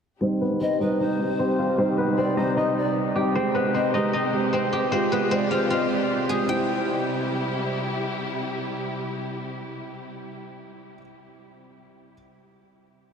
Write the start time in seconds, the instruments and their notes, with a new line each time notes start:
0.21 string section C3 G3 D#4 G4, grand piano G3 C4 D#4, guzheng C4 C5
0.41 guzheng B3 B4
0.50 grand piano G3 C4 D#4
0.61 guzheng C4 C5, pan flute D#5
0.79 grand piano G3 C4 D#4, guzheng D#4 D#5, pan flute B4
1.00 guzheng D#4 D#5, pan flute C5
1.19 grand piano G3 C4 D#4
1.39 guzheng C4 C5
1.59 guzheng F4 F5
1.78 grand piano G3 C4 D#4, guzheng C4 C5
1.98 guzheng B3 B4
2.07 grand piano G3 C4 D#4
2.17 guzheng C4 C5, pan flute D5
2.36 grand piano G3 C4 D#4, guzheng D#4 D#5, pan flute C5
2.57 guzheng D#4 D#5, pan flute D#5
2.76 pan flute D5
3.15 grand piano G3 C4 D#4, guzheng G4 G5
3.34 grand piano G#3 C4 G4, string section G#3 G4, guzheng C4 C5
3.55 guzheng B3 B4
3.64 grand piano G#3 C4 G4
3.74 guzheng C4 C5, pan flute D#5
3.93 grand piano G#3 C4 G4, guzheng D#4 D#5, pan flute B4
4.13 guzheng D#4 D#5, pan flute C5
4.32 grand piano G#3 C4 G4
4.53 guzheng C4 C5
4.73 guzheng G4 G5
4.91 string section C3 F4 G4, grand piano G#3 F4 G4, guzheng C4 C5
5.12 guzheng B3 B4
5.21 grand piano G#3 F4 G#4
5.31 guzheng C4 C5, pan flute D5
5.50 grand piano G#3 F4 G4, guzheng F4 F5, pan flute C5
5.70 guzheng F4 F5, pan flute D#5
5.90 pan flute D5
6.29 grand piano G#3 F4 G4, guzheng G#4 G#5, pan flute C5
6.46 string section C3 G3 E4 G4, grand piano C4 E4, pan flute C5, guzheng G5
6.52 grand piano G4